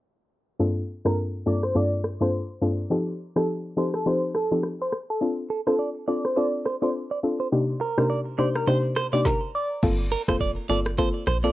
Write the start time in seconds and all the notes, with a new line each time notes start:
0.59 G2 A#3 C4 D4 F4 A4
1.05 G2 A#3 C4 D4 F4 A4 A#4, cross-stick
1.46 G2 A#3 C4 D4 F4 A4 D5
1.63 C5, cross-stick
1.75 G2 A#3 C4 D4 F4 A4 D5
2.04 cross-stick
2.20 G2 A#3 C4 D4 F4 A4 C5
2.61 G2 A#3 C4 D4 F4 A4
2.90 F3 C4 D#4 G4 A4
3.36 F3 C4 D#4 G4 A4, cross-stick
3.77 F3 C4 D#4 G4 A4 C5
3.94 A4, cross-stick
4.06 F3 C4 D#4 G4 A4 C5
4.35 A4, cross-stick
4.51 F3 C4 D#4 G4 A4
4.63 cross-stick
4.82 C5
4.92 cross-stick
5.10 A4
5.21 C4 D4 F4 A4, shaker
5.50 A4, shaker
5.67 C4 D4 F4 A4 C5, cross-stick, shaker
5.79 D5, shaker
6.08 C4 D4 F4 A4 D5, shaker
6.24 C5, cross-stick, shaker
6.36 C4 D4 F4 A4 C5 D5, shaker
6.65 C5, cross-stick, shaker
6.82 C4 D4 F4 A4 C5 D5, shaker
6.94 shaker
7.11 D5
7.23 C4 D4 F4 A4, shaker
7.39 C5, shaker
7.52 C3 A#3 D4 D#4 G4, shaker
7.80 A#4, shaker
7.97 C3 A#3 D4 D#4 G4 A#4 C5, cross-stick, shaker
8.10 D5, shaker
8.38 C3 A#3 D4 D#4 G4 C5 D5, shaker
8.54 A#4, cross-stick, shaker
8.67 C3 A#3 D4 D#4 G4 C5, shaker
8.96 C5, cross-stick, shaker
9.13 C3 A#3 D4 D#4 G4 D5, shaker
9.25 A#4, kick, snare
9.55 D5
9.83 G1 A#3 C4 F4 A4, kick, crash, shaker
10.11 A#4, shaker
10.28 F1 A#3 C4 F4 A4 C5, kick, cross-stick, shaker
10.40 D5, kick, shaker
10.69 G1 A#3 C4 F4 A4 D5, shaker
10.85 cross-stick, shaker
10.98 A#3 C4 F4 A4 C5, kick, shaker
11.26 A#1 C5, cross-stick, shaker
11.44 A#3 C4 F4 A4 D5, shaker